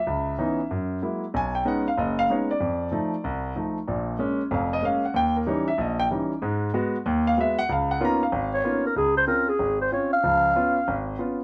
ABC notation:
X:1
M:4/4
L:1/16
Q:"Swing" 1/4=189
K:C#mix
V:1 name="Clarinet"
z16 | z16 | z16 | z16 |
z16 | z16 | z8 z2 c4 A2 | [K:Db] A2 c2 B2 A4 c2 d2 f2- |
f8- f2 z6 |]
V:2 name="Grand piano"
=e8 z8 | g2 =g2 f2 e2 d2 e2 c2 =d2- | =d8 z8 | z8 e2 d2 e2 f2 |
=g2 A2 c2 =e2 d2 g2 z4 | z8 z2 e2 =e2 f2 | e2 f2 a2 e8- e z | [K:Db] z16 |
z16 |]
V:3 name="Grand piano"
C,,4 [=E,B,CD]2 z2 F,,4 [F,G,A,=E]2 z2 | B,,,4 [G,B,CD]2 z2 F,,,4 [G,B,CD]2 z2 | =F,,4 [=F,=A,_E]2 z2 =C,,4 [F,A,E]2 z2 | [A,,,A,,]4 [G,A,C]2 z2 [E,,,E,,]4 [G,A,C]2 z2 |
D,,4 [=E,=G,CD]2 z2 A,,,4 [E,G,CD]2 z2 | [G,,G,]4 [G,B,F]2 z2 D,,4 [G,B,F]2 z2 | C,,4 [A,B,CDE]2 z2 G,,,4 [A,B,CDE]2 z2 | [K:Db] D,,4 [CDF]2 z2 A,,,4 [CDF]2 z2 |
[D,,F,]4 [_CDF]2 z2 A,,,4 [CDF]2 z2 |]